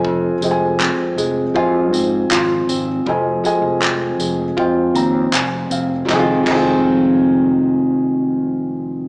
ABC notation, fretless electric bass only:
X:1
M:4/4
L:1/16
Q:1/4=79
K:Fm
V:1 name="Fretless electric bass" clef=bass
F,,,2 F,,,3 z F,,,2 F,,2 A,,2 A,,,2 A,,,2 | F,,,2 z F,,,3 F,,,2 F,,2 E,,2 F,,,2 F,,,2 | F,,, z F,,,12- F,,,2 |]